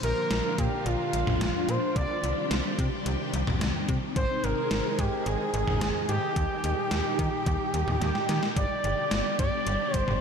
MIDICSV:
0, 0, Header, 1, 5, 480
1, 0, Start_track
1, 0, Key_signature, -3, "minor"
1, 0, Tempo, 550459
1, 1708, Time_signature, 4, 2, 24, 8
1, 8902, End_track
2, 0, Start_track
2, 0, Title_t, "Analog synth lead"
2, 0, Program_c, 0, 81
2, 29, Note_on_c, 0, 70, 99
2, 509, Note_on_c, 0, 67, 89
2, 522, Note_off_c, 0, 70, 0
2, 749, Note_on_c, 0, 65, 96
2, 762, Note_off_c, 0, 67, 0
2, 1471, Note_on_c, 0, 72, 105
2, 1484, Note_off_c, 0, 65, 0
2, 1710, Note_off_c, 0, 72, 0
2, 1713, Note_on_c, 0, 74, 105
2, 2158, Note_off_c, 0, 74, 0
2, 3627, Note_on_c, 0, 72, 109
2, 3867, Note_on_c, 0, 70, 109
2, 3880, Note_off_c, 0, 72, 0
2, 4348, Note_on_c, 0, 67, 95
2, 4361, Note_off_c, 0, 70, 0
2, 4588, Note_on_c, 0, 68, 103
2, 4601, Note_off_c, 0, 67, 0
2, 5305, Note_off_c, 0, 68, 0
2, 5310, Note_on_c, 0, 67, 94
2, 6954, Note_off_c, 0, 67, 0
2, 6990, Note_on_c, 0, 67, 90
2, 7212, Note_off_c, 0, 67, 0
2, 7229, Note_on_c, 0, 67, 91
2, 7337, Note_off_c, 0, 67, 0
2, 7471, Note_on_c, 0, 74, 111
2, 8155, Note_off_c, 0, 74, 0
2, 8189, Note_on_c, 0, 74, 113
2, 8686, Note_off_c, 0, 74, 0
2, 8686, Note_on_c, 0, 72, 113
2, 8902, Note_off_c, 0, 72, 0
2, 8902, End_track
3, 0, Start_track
3, 0, Title_t, "String machine"
3, 0, Program_c, 1, 50
3, 0, Note_on_c, 1, 46, 80
3, 0, Note_on_c, 1, 50, 74
3, 0, Note_on_c, 1, 53, 70
3, 0, Note_on_c, 1, 62, 69
3, 0, Note_on_c, 1, 65, 86
3, 1674, Note_off_c, 1, 46, 0
3, 1689, Note_off_c, 1, 50, 0
3, 1689, Note_off_c, 1, 53, 0
3, 1689, Note_off_c, 1, 65, 0
3, 1709, Note_on_c, 1, 48, 80
3, 1709, Note_on_c, 1, 55, 72
3, 1709, Note_on_c, 1, 67, 86
3, 1710, Note_on_c, 1, 51, 72
3, 3594, Note_off_c, 1, 62, 0
3, 3610, Note_off_c, 1, 55, 0
3, 3610, Note_off_c, 1, 67, 0
3, 3628, Note_on_c, 1, 56, 74
3, 3628, Note_on_c, 1, 68, 86
3, 3629, Note_on_c, 1, 63, 74
3, 5514, Note_off_c, 1, 48, 0
3, 5529, Note_off_c, 1, 56, 0
3, 5529, Note_off_c, 1, 68, 0
3, 5549, Note_on_c, 1, 46, 78
3, 5550, Note_on_c, 1, 55, 74
3, 5550, Note_on_c, 1, 67, 86
3, 7434, Note_off_c, 1, 51, 0
3, 7434, Note_off_c, 1, 63, 0
3, 7450, Note_off_c, 1, 46, 0
3, 7450, Note_off_c, 1, 55, 0
3, 7450, Note_off_c, 1, 67, 0
3, 7470, Note_on_c, 1, 47, 80
3, 7470, Note_on_c, 1, 50, 72
3, 7470, Note_on_c, 1, 55, 73
3, 7470, Note_on_c, 1, 62, 73
3, 7470, Note_on_c, 1, 67, 85
3, 8902, Note_off_c, 1, 47, 0
3, 8902, Note_off_c, 1, 50, 0
3, 8902, Note_off_c, 1, 55, 0
3, 8902, Note_off_c, 1, 62, 0
3, 8902, Note_off_c, 1, 67, 0
3, 8902, End_track
4, 0, Start_track
4, 0, Title_t, "FM bass"
4, 0, Program_c, 2, 39
4, 27, Note_on_c, 2, 34, 97
4, 115, Note_off_c, 2, 34, 0
4, 269, Note_on_c, 2, 34, 101
4, 356, Note_off_c, 2, 34, 0
4, 510, Note_on_c, 2, 46, 99
4, 596, Note_off_c, 2, 46, 0
4, 749, Note_on_c, 2, 34, 106
4, 836, Note_off_c, 2, 34, 0
4, 989, Note_on_c, 2, 34, 84
4, 1076, Note_off_c, 2, 34, 0
4, 1109, Note_on_c, 2, 34, 99
4, 1196, Note_off_c, 2, 34, 0
4, 1228, Note_on_c, 2, 34, 108
4, 1315, Note_off_c, 2, 34, 0
4, 1468, Note_on_c, 2, 46, 96
4, 1555, Note_off_c, 2, 46, 0
4, 1708, Note_on_c, 2, 36, 107
4, 1796, Note_off_c, 2, 36, 0
4, 1947, Note_on_c, 2, 36, 97
4, 2035, Note_off_c, 2, 36, 0
4, 2188, Note_on_c, 2, 36, 99
4, 2275, Note_off_c, 2, 36, 0
4, 2430, Note_on_c, 2, 48, 98
4, 2516, Note_off_c, 2, 48, 0
4, 2669, Note_on_c, 2, 36, 102
4, 2756, Note_off_c, 2, 36, 0
4, 2908, Note_on_c, 2, 36, 100
4, 2995, Note_off_c, 2, 36, 0
4, 3030, Note_on_c, 2, 36, 99
4, 3117, Note_off_c, 2, 36, 0
4, 3149, Note_on_c, 2, 36, 101
4, 3236, Note_off_c, 2, 36, 0
4, 3389, Note_on_c, 2, 48, 88
4, 3476, Note_off_c, 2, 48, 0
4, 3629, Note_on_c, 2, 32, 104
4, 3716, Note_off_c, 2, 32, 0
4, 3870, Note_on_c, 2, 32, 93
4, 3956, Note_off_c, 2, 32, 0
4, 4108, Note_on_c, 2, 32, 95
4, 4195, Note_off_c, 2, 32, 0
4, 4349, Note_on_c, 2, 44, 105
4, 4436, Note_off_c, 2, 44, 0
4, 4589, Note_on_c, 2, 32, 102
4, 4676, Note_off_c, 2, 32, 0
4, 4829, Note_on_c, 2, 32, 104
4, 4916, Note_off_c, 2, 32, 0
4, 4949, Note_on_c, 2, 32, 89
4, 5036, Note_off_c, 2, 32, 0
4, 5068, Note_on_c, 2, 32, 106
4, 5155, Note_off_c, 2, 32, 0
4, 5309, Note_on_c, 2, 44, 93
4, 5396, Note_off_c, 2, 44, 0
4, 5549, Note_on_c, 2, 39, 107
4, 5636, Note_off_c, 2, 39, 0
4, 5789, Note_on_c, 2, 39, 97
4, 5876, Note_off_c, 2, 39, 0
4, 6029, Note_on_c, 2, 39, 100
4, 6116, Note_off_c, 2, 39, 0
4, 6269, Note_on_c, 2, 51, 96
4, 6356, Note_off_c, 2, 51, 0
4, 6509, Note_on_c, 2, 39, 105
4, 6596, Note_off_c, 2, 39, 0
4, 6748, Note_on_c, 2, 39, 93
4, 6835, Note_off_c, 2, 39, 0
4, 6868, Note_on_c, 2, 39, 100
4, 6955, Note_off_c, 2, 39, 0
4, 6988, Note_on_c, 2, 39, 108
4, 7075, Note_off_c, 2, 39, 0
4, 7229, Note_on_c, 2, 51, 98
4, 7316, Note_off_c, 2, 51, 0
4, 7469, Note_on_c, 2, 31, 105
4, 7556, Note_off_c, 2, 31, 0
4, 7709, Note_on_c, 2, 31, 96
4, 7796, Note_off_c, 2, 31, 0
4, 7949, Note_on_c, 2, 31, 90
4, 8036, Note_off_c, 2, 31, 0
4, 8189, Note_on_c, 2, 43, 94
4, 8276, Note_off_c, 2, 43, 0
4, 8430, Note_on_c, 2, 31, 100
4, 8516, Note_off_c, 2, 31, 0
4, 8669, Note_on_c, 2, 31, 94
4, 8756, Note_off_c, 2, 31, 0
4, 8788, Note_on_c, 2, 31, 99
4, 8875, Note_off_c, 2, 31, 0
4, 8902, End_track
5, 0, Start_track
5, 0, Title_t, "Drums"
5, 29, Note_on_c, 9, 42, 70
5, 116, Note_off_c, 9, 42, 0
5, 267, Note_on_c, 9, 38, 113
5, 269, Note_on_c, 9, 42, 66
5, 354, Note_off_c, 9, 38, 0
5, 356, Note_off_c, 9, 42, 0
5, 510, Note_on_c, 9, 36, 91
5, 510, Note_on_c, 9, 42, 81
5, 597, Note_off_c, 9, 36, 0
5, 597, Note_off_c, 9, 42, 0
5, 749, Note_on_c, 9, 42, 79
5, 836, Note_off_c, 9, 42, 0
5, 989, Note_on_c, 9, 42, 79
5, 1076, Note_off_c, 9, 42, 0
5, 1110, Note_on_c, 9, 45, 87
5, 1110, Note_on_c, 9, 47, 87
5, 1197, Note_off_c, 9, 45, 0
5, 1197, Note_off_c, 9, 47, 0
5, 1230, Note_on_c, 9, 42, 74
5, 1231, Note_on_c, 9, 38, 107
5, 1318, Note_off_c, 9, 38, 0
5, 1318, Note_off_c, 9, 42, 0
5, 1470, Note_on_c, 9, 42, 72
5, 1557, Note_off_c, 9, 42, 0
5, 1709, Note_on_c, 9, 36, 109
5, 1709, Note_on_c, 9, 42, 76
5, 1796, Note_off_c, 9, 36, 0
5, 1796, Note_off_c, 9, 42, 0
5, 1950, Note_on_c, 9, 42, 70
5, 2037, Note_off_c, 9, 42, 0
5, 2188, Note_on_c, 9, 38, 113
5, 2190, Note_on_c, 9, 42, 64
5, 2275, Note_off_c, 9, 38, 0
5, 2277, Note_off_c, 9, 42, 0
5, 2430, Note_on_c, 9, 36, 95
5, 2430, Note_on_c, 9, 42, 78
5, 2517, Note_off_c, 9, 36, 0
5, 2517, Note_off_c, 9, 42, 0
5, 2669, Note_on_c, 9, 42, 79
5, 2756, Note_off_c, 9, 42, 0
5, 2909, Note_on_c, 9, 42, 78
5, 2996, Note_off_c, 9, 42, 0
5, 3029, Note_on_c, 9, 45, 85
5, 3029, Note_on_c, 9, 47, 88
5, 3116, Note_off_c, 9, 45, 0
5, 3116, Note_off_c, 9, 47, 0
5, 3150, Note_on_c, 9, 42, 71
5, 3151, Note_on_c, 9, 38, 108
5, 3237, Note_off_c, 9, 42, 0
5, 3238, Note_off_c, 9, 38, 0
5, 3388, Note_on_c, 9, 42, 75
5, 3389, Note_on_c, 9, 36, 83
5, 3475, Note_off_c, 9, 42, 0
5, 3476, Note_off_c, 9, 36, 0
5, 3628, Note_on_c, 9, 42, 75
5, 3629, Note_on_c, 9, 36, 109
5, 3716, Note_off_c, 9, 36, 0
5, 3716, Note_off_c, 9, 42, 0
5, 3869, Note_on_c, 9, 42, 72
5, 3956, Note_off_c, 9, 42, 0
5, 4106, Note_on_c, 9, 38, 117
5, 4108, Note_on_c, 9, 42, 62
5, 4193, Note_off_c, 9, 38, 0
5, 4195, Note_off_c, 9, 42, 0
5, 4349, Note_on_c, 9, 36, 94
5, 4349, Note_on_c, 9, 42, 81
5, 4436, Note_off_c, 9, 36, 0
5, 4436, Note_off_c, 9, 42, 0
5, 4588, Note_on_c, 9, 42, 80
5, 4675, Note_off_c, 9, 42, 0
5, 4829, Note_on_c, 9, 42, 80
5, 4916, Note_off_c, 9, 42, 0
5, 4949, Note_on_c, 9, 45, 89
5, 4949, Note_on_c, 9, 47, 85
5, 5036, Note_off_c, 9, 45, 0
5, 5036, Note_off_c, 9, 47, 0
5, 5070, Note_on_c, 9, 38, 106
5, 5070, Note_on_c, 9, 42, 76
5, 5157, Note_off_c, 9, 42, 0
5, 5158, Note_off_c, 9, 38, 0
5, 5308, Note_on_c, 9, 42, 72
5, 5396, Note_off_c, 9, 42, 0
5, 5548, Note_on_c, 9, 42, 76
5, 5549, Note_on_c, 9, 36, 109
5, 5636, Note_off_c, 9, 36, 0
5, 5636, Note_off_c, 9, 42, 0
5, 5789, Note_on_c, 9, 42, 74
5, 5876, Note_off_c, 9, 42, 0
5, 6027, Note_on_c, 9, 38, 111
5, 6029, Note_on_c, 9, 42, 67
5, 6114, Note_off_c, 9, 38, 0
5, 6116, Note_off_c, 9, 42, 0
5, 6269, Note_on_c, 9, 42, 81
5, 6270, Note_on_c, 9, 36, 95
5, 6357, Note_off_c, 9, 36, 0
5, 6357, Note_off_c, 9, 42, 0
5, 6508, Note_on_c, 9, 42, 79
5, 6510, Note_on_c, 9, 36, 83
5, 6595, Note_off_c, 9, 42, 0
5, 6597, Note_off_c, 9, 36, 0
5, 6748, Note_on_c, 9, 42, 81
5, 6836, Note_off_c, 9, 42, 0
5, 6869, Note_on_c, 9, 47, 88
5, 6956, Note_off_c, 9, 47, 0
5, 6988, Note_on_c, 9, 38, 54
5, 6989, Note_on_c, 9, 42, 71
5, 7076, Note_off_c, 9, 38, 0
5, 7077, Note_off_c, 9, 42, 0
5, 7108, Note_on_c, 9, 38, 61
5, 7196, Note_off_c, 9, 38, 0
5, 7228, Note_on_c, 9, 38, 85
5, 7228, Note_on_c, 9, 42, 74
5, 7315, Note_off_c, 9, 38, 0
5, 7316, Note_off_c, 9, 42, 0
5, 7349, Note_on_c, 9, 38, 81
5, 7436, Note_off_c, 9, 38, 0
5, 7469, Note_on_c, 9, 36, 111
5, 7469, Note_on_c, 9, 42, 76
5, 7556, Note_off_c, 9, 36, 0
5, 7556, Note_off_c, 9, 42, 0
5, 7710, Note_on_c, 9, 42, 74
5, 7797, Note_off_c, 9, 42, 0
5, 7946, Note_on_c, 9, 38, 111
5, 7948, Note_on_c, 9, 42, 64
5, 8034, Note_off_c, 9, 38, 0
5, 8035, Note_off_c, 9, 42, 0
5, 8189, Note_on_c, 9, 36, 95
5, 8189, Note_on_c, 9, 42, 81
5, 8276, Note_off_c, 9, 36, 0
5, 8276, Note_off_c, 9, 42, 0
5, 8428, Note_on_c, 9, 42, 77
5, 8516, Note_off_c, 9, 42, 0
5, 8668, Note_on_c, 9, 42, 79
5, 8669, Note_on_c, 9, 36, 85
5, 8755, Note_off_c, 9, 42, 0
5, 8756, Note_off_c, 9, 36, 0
5, 8788, Note_on_c, 9, 47, 85
5, 8875, Note_off_c, 9, 47, 0
5, 8902, End_track
0, 0, End_of_file